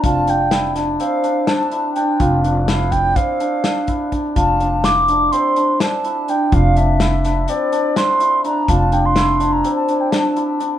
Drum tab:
HH |xxxxxxxxx|xxxxxxxxx|xxxxxxxxx|xxxxxxxxx|
SD |--oo--o--|--o---o--|--o---o--|--oo--o--|
BD |o--------|o--oo--oo|o--------|o--------|

HH |xxxxxxxxx|
SD |--o---o--|
BD |o--------|